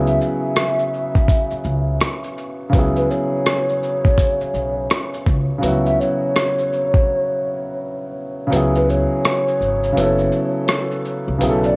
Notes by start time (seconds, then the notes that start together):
Already playing: C#2 C#3 F#3 B3 E4 G#4
0.07 E5, shaker
0.21 E5, shaker
0.56 cross-stick, closed hi-hat, shaker
0.79 shaker
0.94 shaker
1.15 B1, kick, shaker
1.28 kick, closed hi-hat, shaker
1.51 muted upright bass stroke, shaker
1.64 C#2, shaker
2.01 cross-stick, closed hi-hat, shaker
2.24 shaker
2.38 shaker
2.70 C#2 C#3 F#3, kick, closed hi-hat, shaker
2.74 B3 E4
2.79 G#4
2.96 B4, shaker
3.10 C#5, shaker
3.46 cross-stick, closed hi-hat, shaker
3.69 shaker
3.83 shaker
4.05 B1, kick, shaker
4.18 kick, closed hi-hat, shaker
4.41 muted upright bass stroke, shaker
4.54 B1, shaker
4.90 cross-stick, closed hi-hat, shaker
5.14 shaker
5.26 C#2, kick, shaker
5.58 C#3 F#3
5.62 C#2 B3 E4, closed hi-hat, shaker
5.68 F#4
5.86 E5, shaker
6.00 C#5, shaker
6.36 cross-stick, closed hi-hat, shaker
6.58 shaker
6.73 shaker
6.94 B1, kick
8.47 C#3 F#3
8.52 C#2 B3 E4, closed hi-hat, shaker
8.56 G#4
8.75 B4, shaker
8.89 C#5, shaker
9.25 cross-stick, closed hi-hat, shaker
9.48 shaker
9.60 G#1, shaker
9.83 shaker
9.92 C#3 F#3
9.97 F#1 B3 E4, closed hi-hat, shaker
10.02 A4
10.18 shaker
10.32 shaker
10.68 cross-stick, closed hi-hat, shaker
10.91 shaker
11.05 shaker
11.28 C2
11.38 B1 C#3 F#3 B3 E4, closed hi-hat, shaker
11.43 G#4
11.50 A4
11.64 D5, shaker